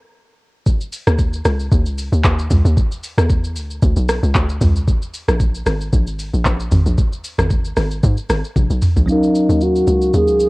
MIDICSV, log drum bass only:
0, 0, Header, 1, 2, 480
1, 0, Start_track
1, 0, Tempo, 526316
1, 606, Time_signature, 4, 2, 24, 8
1, 9570, End_track
2, 0, Start_track
2, 0, Title_t, "Log drum bass"
2, 0, Program_c, 0, 39
2, 977, Note_on_c, 0, 39, 89
2, 1291, Note_off_c, 0, 39, 0
2, 1325, Note_on_c, 0, 37, 91
2, 1542, Note_off_c, 0, 37, 0
2, 1567, Note_on_c, 0, 39, 99
2, 1696, Note_on_c, 0, 37, 94
2, 1710, Note_off_c, 0, 39, 0
2, 1913, Note_off_c, 0, 37, 0
2, 1936, Note_on_c, 0, 39, 90
2, 2034, Note_off_c, 0, 39, 0
2, 2046, Note_on_c, 0, 39, 100
2, 2262, Note_off_c, 0, 39, 0
2, 2284, Note_on_c, 0, 37, 94
2, 2404, Note_off_c, 0, 37, 0
2, 2416, Note_on_c, 0, 39, 100
2, 2514, Note_off_c, 0, 39, 0
2, 2896, Note_on_c, 0, 40, 93
2, 3244, Note_on_c, 0, 38, 93
2, 3257, Note_off_c, 0, 40, 0
2, 3461, Note_off_c, 0, 38, 0
2, 3487, Note_on_c, 0, 38, 102
2, 3605, Note_off_c, 0, 38, 0
2, 3616, Note_on_c, 0, 35, 98
2, 3833, Note_off_c, 0, 35, 0
2, 3857, Note_on_c, 0, 37, 90
2, 3954, Note_off_c, 0, 37, 0
2, 3966, Note_on_c, 0, 38, 85
2, 4182, Note_off_c, 0, 38, 0
2, 4203, Note_on_c, 0, 37, 97
2, 4421, Note_off_c, 0, 37, 0
2, 4818, Note_on_c, 0, 34, 99
2, 5131, Note_off_c, 0, 34, 0
2, 5164, Note_on_c, 0, 32, 88
2, 5381, Note_off_c, 0, 32, 0
2, 5408, Note_on_c, 0, 34, 101
2, 5536, Note_on_c, 0, 32, 92
2, 5550, Note_off_c, 0, 34, 0
2, 5753, Note_off_c, 0, 32, 0
2, 5778, Note_on_c, 0, 34, 88
2, 5875, Note_off_c, 0, 34, 0
2, 5886, Note_on_c, 0, 34, 98
2, 6102, Note_off_c, 0, 34, 0
2, 6125, Note_on_c, 0, 32, 102
2, 6244, Note_off_c, 0, 32, 0
2, 6256, Note_on_c, 0, 34, 98
2, 6354, Note_off_c, 0, 34, 0
2, 6734, Note_on_c, 0, 32, 95
2, 7049, Note_off_c, 0, 32, 0
2, 7086, Note_on_c, 0, 32, 93
2, 7302, Note_off_c, 0, 32, 0
2, 7327, Note_on_c, 0, 44, 111
2, 7445, Note_off_c, 0, 44, 0
2, 7565, Note_on_c, 0, 32, 97
2, 7684, Note_off_c, 0, 32, 0
2, 7805, Note_on_c, 0, 34, 99
2, 7924, Note_off_c, 0, 34, 0
2, 7934, Note_on_c, 0, 35, 86
2, 8033, Note_off_c, 0, 35, 0
2, 8174, Note_on_c, 0, 34, 92
2, 8273, Note_off_c, 0, 34, 0
2, 8655, Note_on_c, 0, 39, 87
2, 8970, Note_off_c, 0, 39, 0
2, 9003, Note_on_c, 0, 37, 89
2, 9220, Note_off_c, 0, 37, 0
2, 9245, Note_on_c, 0, 39, 97
2, 9375, Note_on_c, 0, 37, 87
2, 9389, Note_off_c, 0, 39, 0
2, 9570, Note_off_c, 0, 37, 0
2, 9570, End_track
0, 0, End_of_file